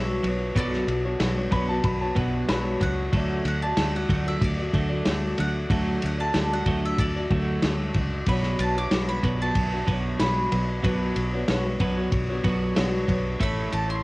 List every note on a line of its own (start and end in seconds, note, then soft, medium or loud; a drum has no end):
0.00 0.19 B1 medium
0.00 0.20 B2 medium
0.00 0.25 B2 medium
0.00 0.21 F#3 medium
0.00 0.25 F#3 medium
0.00 0.25 B3 medium
0.00 3.09 B3 medium
0.00 0.26 D4 medium
0.00 3.09 D4 medium
0.00 0.26 F#4 medium
0.00 3.09 B4 medium
0.00 0.26 C#5 medium
0.00 0.55 E5 medium
0.23 0.51 B1 medium
0.23 0.53 B2 medium
0.23 0.53 F#3 medium
0.23 0.57 B3 medium
0.23 ride medium
0.27 0.57 D4 medium
0.27 0.58 F#4 medium
0.27 0.59 C#5 medium
0.55 0.83 B1 medium
0.55 0.86 B2 medium
0.55 1.05 B2 medium
0.55 0.86 F#3 medium
0.55 1.05 F#3 medium
0.55 0.87 B3 medium
0.55 1.05 B3 medium
0.55 1.06 D4 medium
0.55 1.05 F#4 medium
0.55 2.46 A4 medium
0.55 2.46 D5 medium
0.55 kick loud
0.55 ride medium
0.73 snare soft
0.88 1.15 B1 medium
0.88 1.17 B2 medium
0.88 ride medium
1.05 1.21 B3 soft
1.05 1.22 D4 soft
1.05 1.22 F#4 medium
1.05 1.21 C#5 medium
1.20 1.47 B1 medium
1.20 1.49 B2 medium
1.20 1.37 B2 medium
1.20 1.49 F#3 medium
1.20 1.38 F#3 medium
1.20 1.38 B3 medium
1.20 1.38 D4 medium
1.20 1.38 F#4 medium
1.20 1.37 C#5 medium
1.20 snare loud
1.20 ride medium
1.38 1.51 B3 soft
1.38 1.53 D4 medium
1.38 1.54 F#4 medium
1.38 1.53 C#5 medium
1.51 1.80 B1 medium
1.51 1.82 B2 medium
1.51 1.82 F#3 medium
1.51 1.83 B3 medium
1.51 1.69 B3 medium
1.51 1.69 D4 medium
1.51 1.70 F#4 medium
1.51 1.68 B5 medium
1.51 kick medium
1.51 ride medium
1.56 1.71 C#5 medium
1.69 2.03 B3 soft
1.69 2.02 D4 soft
1.69 2.02 F#4 medium
1.69 1.84 A5 medium
1.83 2.11 B1 medium
1.83 2.13 B2 medium
1.83 2.13 F#3 medium
1.83 2.00 B5 medium
1.83 kick loud
1.83 ride medium
2.01 2.18 D4 medium
2.01 2.18 F#4 medium
2.01 2.18 C#5 medium
2.01 2.16 A5 medium
2.06 2.16 B3 soft
2.15 2.44 B1 medium
2.15 2.46 B2 medium
2.15 2.47 F#3 medium
2.15 2.47 B3 loud
2.15 2.49 B3 medium
2.15 2.50 D4 medium
2.15 2.50 F#4 medium
2.15 2.48 F#5 medium
2.15 kick medium
2.15 ride medium
2.49 2.76 B1 medium
2.49 2.82 B2 medium
2.49 2.78 F#3 medium
2.49 2.82 F#3 medium
2.49 2.81 B3 medium
2.49 2.82 D4 medium
2.49 2.82 F#4 medium
2.49 2.83 C#5 medium
2.49 2.80 B5 medium
2.49 snare loud
2.49 ride medium
2.80 3.08 C#2 medium
2.80 3.10 B2 medium
2.80 3.10 F#3 medium
2.80 3.14 B3 medium
2.80 3.14 D4 medium
2.80 3.15 F#4 medium
2.80 3.44 F#5 medium
2.80 kick medium
2.80 ride medium
2.85 3.15 C#5 medium
3.13 3.40 D2 medium
3.13 3.43 D3 medium
3.13 3.62 D3 medium
3.13 3.43 F#3 medium
3.13 3.62 F#3 medium
3.13 8.23 A3 medium
3.13 3.44 A3 medium
3.13 3.63 A3 medium
3.13 3.63 D4 medium
3.13 8.23 F#4 medium
3.13 5.68 D5 medium
3.13 kick loud
3.13 ride medium
3.17 3.63 F#4 medium
3.17 3.63 D5 medium
3.45 3.72 D2 medium
3.45 3.74 D3 medium
3.45 3.74 F#3 medium
3.45 3.62 F#5 medium
3.45 ride medium
3.62 3.80 D4 soft
3.62 3.80 F#4 soft
3.62 3.79 D5 medium
3.62 3.93 A5 medium
3.67 3.79 A3 soft
3.77 4.04 D2 medium
3.77 4.06 D3 medium
3.77 3.95 D3 medium
3.77 4.06 F#3 medium
3.77 3.95 F#3 medium
3.77 3.95 A3 medium
3.77 snare loud
3.77 ride medium
3.81 3.96 D4 medium
3.81 3.96 F#4 medium
3.81 3.95 D5 medium
3.96 4.11 A3 soft
3.96 4.12 D4 soft
3.96 4.11 F#4 soft
3.96 4.11 D5 medium
3.96 4.26 F#5 medium
4.09 4.36 D2 medium
4.09 4.40 D3 medium
4.09 4.40 F#3 medium
4.09 4.40 A3 medium
4.09 4.27 A3 medium
4.09 kick medium
4.09 ride medium
4.14 4.28 D4 medium
4.14 4.27 F#4 medium
4.14 4.26 D5 medium
4.27 4.60 A3 soft
4.27 4.60 D4 soft
4.27 4.59 F#4 soft
4.27 4.58 D5 soft
4.27 4.42 E5 medium
4.41 4.69 D2 medium
4.41 4.71 D3 medium
4.41 4.71 F#3 medium
4.41 5.05 D5 medium
4.41 kick loud
4.41 ride medium
4.59 4.72 A3 soft
4.59 4.73 D4 soft
4.59 4.74 F#4 soft
4.59 4.75 D5 medium
4.73 5.01 D2 medium
4.73 5.04 D3 medium
4.73 5.04 F#3 medium
4.73 4.90 A3 medium
4.73 5.04 A3 loud
4.73 4.90 D4 medium
4.73 4.89 F#4 medium
4.73 4.88 D5 medium
4.73 kick medium
4.73 ride medium
4.89 5.06 A3 soft
4.89 5.07 D4 soft
4.89 5.06 F#4 soft
4.89 5.06 D5 soft
5.05 5.33 D2 medium
5.05 5.35 D3 medium
5.05 5.39 D3 medium
5.05 5.35 F#3 medium
5.05 5.38 F#3 medium
5.05 5.36 A3 medium
5.05 5.37 D4 medium
5.05 5.38 F#4 medium
5.05 5.39 D5 medium
5.05 snare loud
5.05 ride medium
5.37 5.66 D2 medium
5.37 5.67 D3 medium
5.37 5.68 F#3 medium
5.37 5.69 A3 medium
5.37 5.70 D4 medium
5.37 5.70 F#4 medium
5.37 5.71 D5 medium
5.37 6.02 F#5 medium
5.37 ride medium
5.68 5.97 D2 medium
5.68 6.18 D3 medium
5.68 6.00 D3 medium
5.68 6.01 F#3 medium
5.68 6.19 F#3 medium
5.68 6.19 A3 medium
5.68 6.01 A3 medium
5.68 6.19 D4 medium
5.68 6.18 F#4 medium
5.68 6.17 D5 medium
5.68 8.24 E5 medium
5.68 kick loud
5.68 ride medium
6.02 6.30 D2 medium
6.02 6.32 D3 medium
6.02 6.19 F#5 medium
6.02 ride medium
6.18 6.35 A3 soft
6.18 6.35 D4 soft
6.18 6.35 F#4 soft
6.18 6.34 D5 medium
6.18 6.51 A5 medium
6.34 6.62 D2 medium
6.34 6.51 D3 medium
6.34 6.64 D3 medium
6.34 6.51 F#3 medium
6.34 6.64 F#3 medium
6.34 6.51 A3 medium
6.34 6.51 D4 medium
6.34 6.52 F#4 medium
6.34 6.51 D5 medium
6.34 snare medium
6.34 ride medium
6.52 6.66 A3 soft
6.52 6.68 D4 soft
6.52 6.68 F#4 medium
6.52 6.67 D5 medium
6.52 6.83 F#5 medium
6.66 6.93 D2 medium
6.66 6.97 D3 medium
6.66 6.97 F#3 medium
6.66 6.97 A3 loud
6.66 7.15 A3 medium
6.66 7.16 D4 medium
6.66 7.16 F#4 medium
6.66 kick medium
6.66 ride medium
6.71 7.15 D5 medium
6.86 6.99 E5 medium
6.98 7.26 D2 medium
6.98 7.28 D3 medium
6.98 7.28 F#3 medium
6.98 7.59 A4 medium
6.98 7.62 D5 medium
6.98 kick loud
6.98 ride medium
7.16 7.31 A3 soft
7.16 7.32 D4 soft
7.16 7.32 F#4 soft
7.16 7.32 D5 medium
7.31 7.58 D2 medium
7.31 7.61 D3 medium
7.31 7.61 F#3 medium
7.31 7.62 A3 loud
7.31 7.63 A3 medium
7.31 7.63 D4 medium
7.31 7.64 F#4 medium
7.31 kick medium
7.31 ride medium
7.35 7.64 D5 medium
7.62 7.90 D2 medium
7.62 7.95 D3 medium
7.62 7.92 D3 medium
7.62 7.96 F#3 medium
7.62 7.93 F#3 medium
7.62 7.94 A3 medium
7.62 7.95 D4 medium
7.62 7.96 F#4 medium
7.62 7.96 D5 medium
7.62 snare loud
7.62 ride medium
7.94 8.22 C#2 medium
7.94 8.25 D3 medium
7.94 8.25 F#3 medium
7.94 8.27 A3 medium
7.94 8.28 D4 medium
7.94 8.28 F#4 medium
7.94 8.29 D5 medium
7.94 kick medium
7.94 ride medium
8.27 8.54 B1 medium
8.27 8.58 B2 medium
8.27 8.76 B2 medium
8.27 8.58 F#3 medium
8.27 8.76 F#3 medium
8.27 13.37 B3 medium
8.27 8.58 B3 medium
8.27 8.76 B3 medium
8.27 13.38 D4 medium
8.27 8.77 D4 medium
8.27 8.77 F#4 medium
8.27 13.38 B4 medium
8.27 8.76 C#5 medium
8.27 8.59 B5 medium
8.27 kick loud
8.27 ride medium
8.43 snare soft
8.59 8.86 B1 medium
8.59 8.89 B2 medium
8.59 8.89 F#3 medium
8.59 8.75 A5 medium
8.59 ride medium
8.77 8.93 B3 soft
8.77 8.93 D4 soft
8.77 8.93 F#4 medium
8.77 8.92 C#5 soft
8.77 9.08 D6 medium
8.91 9.19 B1 medium
8.91 9.21 B2 medium
8.91 9.09 B2 medium
8.91 9.21 F#3 medium
8.91 9.09 F#3 medium
8.91 9.09 B3 medium
8.91 9.09 D4 medium
8.91 9.09 F#4 medium
8.91 9.08 C#5 medium
8.91 snare loud
8.91 ride medium
9.09 9.22 B3 soft
9.09 9.24 D4 soft
9.09 9.24 F#4 medium
9.09 9.24 C#5 medium
9.09 9.39 B5 medium
9.23 9.51 B1 medium
9.23 9.54 B2 medium
9.23 9.54 F#3 medium
9.23 9.40 B3 medium
9.23 9.54 B3 loud
9.23 9.41 D4 medium
9.23 9.39 F#4 medium
9.23 9.39 C#5 medium
9.23 kick medium
9.23 ride medium
9.40 9.73 B3 soft
9.40 9.73 D4 soft
9.40 9.72 F#4 soft
9.40 9.71 C#5 medium
9.40 10.19 A5 medium
9.55 9.83 B1 medium
9.55 9.85 F#3 medium
9.55 kick loud
9.55 ride medium
9.72 9.87 B3 soft
9.72 9.88 D4 soft
9.72 9.89 F#4 soft
9.72 9.88 C#5 soft
9.87 10.15 B1 medium
9.87 10.17 B2 medium
9.87 10.18 F#3 medium
9.87 10.18 B3 medium
9.87 10.20 B3 medium
9.87 10.20 D4 medium
9.87 10.21 F#4 medium
9.87 kick medium
9.87 ride medium
9.91 10.21 C#5 medium
10.19 10.47 B1 medium
10.19 10.48 B2 medium
10.19 10.52 B2 medium
10.19 10.49 F#3 medium
10.19 10.53 F#3 medium
10.19 10.51 B3 medium
10.19 10.52 D4 medium
10.19 10.53 F#4 medium
10.19 10.53 C#5 medium
10.19 11.45 B5 medium
10.19 snare loud
10.19 ride medium
10.52 10.80 B1 medium
10.52 10.81 B2 medium
10.52 10.81 F#3 medium
10.52 10.84 B3 medium
10.52 10.84 D4 medium
10.52 10.85 F#4 medium
10.52 10.85 C#5 medium
10.52 ride medium
10.83 11.11 B1 medium
10.83 11.14 B2 medium
10.83 11.32 B2 medium
10.83 11.14 F#3 medium
10.83 11.33 F#3 medium
10.83 11.14 B3 medium
10.83 11.33 B3 medium
10.83 11.33 D4 medium
10.83 11.33 F#4 medium
10.83 11.32 C#5 medium
10.83 kick loud
10.83 ride medium
11.15 11.43 B1 medium
11.15 11.45 B2 medium
11.15 11.45 F#3 medium
11.15 ride medium
11.33 11.48 B3 medium
11.33 11.49 D4 medium
11.33 11.49 F#4 medium
11.33 11.49 C#5 medium
11.48 11.76 B1 medium
11.48 11.77 B2 medium
11.48 11.65 B2 medium
11.48 11.78 F#3 medium
11.48 11.65 F#3 medium
11.48 11.65 B3 medium
11.48 11.66 D4 medium
11.48 11.65 F#4 loud
11.48 11.64 C#5 medium
11.48 snare loud
11.48 ride medium
11.65 11.80 B3 soft
11.65 11.81 D4 soft
11.65 11.81 F#4 medium
11.65 11.81 C#5 medium
11.80 12.07 B1 medium
11.80 12.11 B2 loud
11.80 12.11 F#3 medium
11.80 11.97 B3 medium
11.80 12.11 B3 medium
11.80 11.98 D4 medium
11.80 11.96 F#4 medium
11.80 kick medium
11.80 ride medium
11.84 11.96 C#5 medium
11.97 12.31 B3 soft
11.97 12.29 D4 medium
11.97 12.29 F#4 medium
11.97 12.28 C#5 medium
12.12 12.40 B1 medium
12.12 12.41 B2 medium
12.12 12.42 F#3 medium
12.12 kick loud
12.12 ride medium
12.29 12.44 B3 soft
12.29 12.45 D4 medium
12.29 12.46 F#4 medium
12.29 12.45 C#5 medium
12.44 12.72 B1 medium
12.44 12.75 B2 medium
12.44 12.75 F#3 loud
12.44 12.75 B3 loud
12.44 12.75 B3 medium
12.44 12.76 D4 medium
12.44 12.76 F#4 medium
12.44 kick medium
12.44 ride medium
12.48 12.76 C#5 medium
12.75 13.05 B1 medium
12.75 13.08 B2 medium
12.75 13.06 B2 medium
12.75 13.09 F#3 medium
12.75 13.06 F#3 medium
12.75 13.07 B3 medium
12.75 13.08 D4 medium
12.75 13.09 F#4 medium
12.75 13.10 C#5 medium
12.75 snare loud
12.75 ride medium
13.08 13.36 B1 medium
13.08 13.38 B2 medium
13.08 13.38 F#3 medium
13.08 13.40 B3 medium
13.08 13.40 D4 medium
13.08 13.41 F#4 medium
13.08 13.41 C#5 medium
13.08 kick medium
13.08 ride medium
13.40 13.68 A1 medium
13.40 13.71 A3 medium
13.40 13.89 A3 medium
13.40 14.03 A3 medium
13.40 14.03 E4 medium
13.40 13.71 E4 medium
13.40 13.89 E4 medium
13.40 13.71 A4 medium
13.40 13.89 A4 medium
13.40 14.03 C#5 medium
13.40 13.87 C#5 medium
13.40 13.73 B5 medium
13.40 kick loud
13.40 ride medium
13.72 14.01 A1 medium
13.72 14.02 A3 medium
13.72 14.02 E4 medium
13.72 13.88 A5 medium
13.72 ride medium
13.88 14.03 E4 soft
13.88 14.03 A4 soft
13.88 14.03 C#5 medium
13.88 14.03 C6 medium